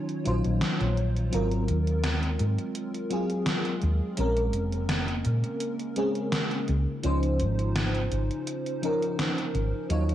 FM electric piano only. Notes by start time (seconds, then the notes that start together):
Already playing: F#3 D#4 F4 C#5
0.24 F#3 D#4 F4 C5
1.31 F#3 C4 F4 A#4
3.10 F#3 C4 F4 G#4
4.17 G#3 C4 C#4 A#4
5.96 G#3 C4 C#4 G#4
7.03 F3 C#4 D#4 C5
8.82 F3 C#4 D#4 A#4
9.89 F#3 D#4 F4 C#5